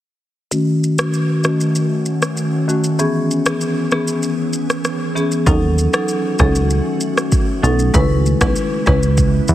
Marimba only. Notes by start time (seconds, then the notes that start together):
0.51 D#3 A3 C#4 F#4
0.99 A3 F#4
1.44 D#3 A3 C#4 F#4
2.68 D#3 A3 C#4 F#4
2.99 E3 B3 C#4 G#4
3.46 E3 B3 C#4 G#4
3.92 E3 B3 C#4 G#4
5.15 E3 B3 C#4 G#4
5.46 F#3 C#4 D#4 A4
5.93 F#3 C#4 D#4 A4
6.39 F#3 C#4 D#4 A4
7.63 F#3 C#4 D#4 A4
7.94 G#3 C#4 E4 B4
8.41 G#3 C#4 E4 B4
8.86 G#3 C#4 E4 B4